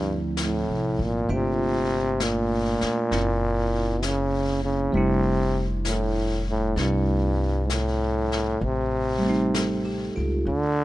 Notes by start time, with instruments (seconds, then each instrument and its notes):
Already playing: upright bass D2, trombone G2, tine electric piano F3 A3 C4 E4
0.37 brush sweep, snare, hi-hat pedal
0.42 trombone A2
0.68 upright bass C2
0.99 upright bass G#1
1.04 trombone A#2
1.29 upright bass G1, tine electric piano A3 A#3 D4 F4, brush sweep
1.34 trombone C3
2.20 trombone A#2, brush sweep, snare, hi-hat pedal
2.81 muted upright bass stroke, snare
3.11 upright bass F#1, tine electric piano A#3 C4 C#4 E4, brush sweep, snare
4.02 trombone C#3, brush sweep, snare, hi-hat pedal
4.65 trombone C#3
4.92 upright bass F1, trombone C3, tine electric piano G3 A3 D4, brush sweep
4.97 tine electric piano E4
5.85 trombone A2, brush sweep, snare, hi-hat pedal
6.50 trombone A2
6.76 upright bass C2, trombone G2, tine electric piano C4 E4, brush sweep, snare
7.66 trombone G#2, brush sweep, snare, hi-hat pedal
7.71 trombone A2
8.32 snare
8.61 upright bass A1, trombone C3, brush sweep
9.18 tine electric piano G3 A3
9.26 tine electric piano C4 D#4
9.54 tine electric piano A4, brush sweep, snare, hi-hat pedal
9.85 tine electric piano G4
10.16 upright bass C#2, tine electric piano F4
10.47 upright bass D2, trombone D3, brush sweep